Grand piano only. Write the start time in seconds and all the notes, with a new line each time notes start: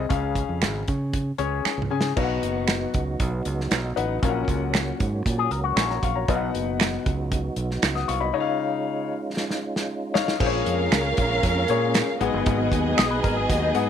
0.09 C#3 C#4 G#4 F5
1.38 C#4 G#4 C#5
1.91 C#4 G#4 G#5
2.16 B2 D#4 B4 F5
2.23 F#5
3.96 D#4 B4 F#5
4.22 A#2 C#4 A#4 F5
4.29 F#5
5.77 G#5
5.90 C#5 A#5
6.03 F5 C#6
6.15 C#5 A#5
6.29 B2 D#4 B4 F5
6.35 F#5
7.95 F#5 D#6
8.08 F5 C#6
8.20 D#5 B5
8.33 C#3 D#4 C#5 D#5
8.40 F5
10.14 D#4 C#5 F5
10.40 A#2 A#3 G#4 C5
10.46 C#5
11.69 A#3 G#4 C#5
12.21 G#2 B3 G#4 F#5
13.75 B3 G#4 F#5